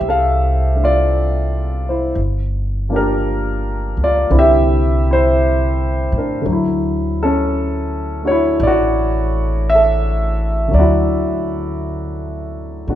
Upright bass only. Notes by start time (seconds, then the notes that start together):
0.01 C2
2.15 G1
3.97 C#2
4.31 C2
6.12 A2
6.46 D2
8.60 A1
10.73 D2
12.88 A2